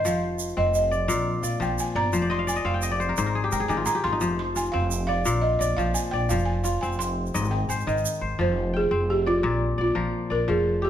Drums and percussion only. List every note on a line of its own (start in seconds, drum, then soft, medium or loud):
0.05 shaker medium
0.39 shaker medium
0.74 shaker medium
0.92 shaker soft
1.09 shaker medium
1.44 shaker medium
1.61 shaker soft
1.79 shaker medium
2.13 shaker medium
2.48 shaker medium
2.82 shaker medium
3.01 shaker soft
3.17 shaker medium
3.52 shaker medium
3.70 shaker soft
3.86 shaker medium
4.21 shaker medium
4.56 shaker medium
4.65 shaker soft
4.91 shaker medium
5.26 shaker medium
5.61 shaker medium
5.79 shaker soft
5.95 shaker medium
6.30 shaker medium
6.39 shaker soft
6.65 shaker medium
6.83 shaker soft
6.92 shaker soft
7.01 shaker medium
7.26 shaker soft
7.35 shaker medium
7.45 shaker soft
7.70 shaker medium
7.80 shaker soft
7.88 shaker soft
7.97 shaker soft
8.05 shaker medium
8.14 shaker soft